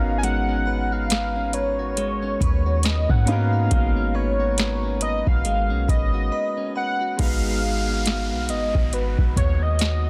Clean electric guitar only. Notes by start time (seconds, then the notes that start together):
0.23 G#3
0.49 C#4
0.67 B4
0.92 F#4
1.10 B4
1.36 C#4
1.54 B4
1.79 F#4
1.97 G#3
2.23 C#4
2.41 B4
2.66 F#4
2.85 B4
3.10 C#4
3.28 B4
3.53 F#4
3.71 G#3
3.96 C#4
4.15 B4
4.40 F#4
4.58 B4
4.83 C#4
5.01 B4
5.27 F#4
5.45 G#3
5.70 C#4
5.89 B4
6.14 F#4
6.32 B4
6.57 C#4
6.76 B4
7.01 F#4
7.19 G#3
7.63 B3
8.06 F#4
8.50 B3
8.93 F#4
9.37 B3
9.80 F#4